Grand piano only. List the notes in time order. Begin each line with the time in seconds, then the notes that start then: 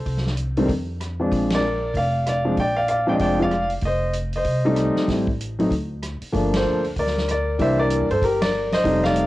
Already playing: A4 C5
0.57 D#3 G3 A3 C4
1.20 F3 G#3 C4 D4
1.55 A#4 D5
1.97 D5 F5
2.28 D5 F5
2.45 F3 G#3 C4 D4
2.60 D5 G5
2.76 D5 F5
2.89 D5 F5
3.07 F3 G#3 C4 D4 G5
3.12 D#5
3.21 D5 G5
3.40 F3 G#3 C4 F4 F5
3.44 D5
3.86 C5 D#5
4.36 C5 D#5
4.65 G3 A3 C4 D#4
5.08 G3 A3 C4 E4
5.59 F#3 A3 C4 D#4
6.32 F3 A3 A#3 D4
6.56 A4 C5
6.99 A#4 D5
7.31 A#4 D5
7.58 E3 G3 A#3 D4 C5 E5
7.80 A#4 D5
8.11 A4 C5
8.24 G4 A#4
8.42 A#4 D5
8.73 C5 D#5
8.84 G3 A3 C4 D#4
9.04 D5 F5